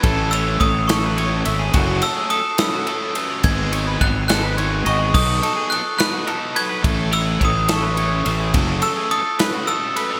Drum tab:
CC |------|------|------|x-----|
RD |xxxxxx|xxxxxx|xxxxxx|-xxxxx|
SD |---o--|---o--|---o--|---o--|
BD |o-o---|o-----|o-o---|o-----|

CC |------|------|
RD |xxxxxx|xxxxxx|
SD |---o--|---o--|
BD |o-o---|o-----|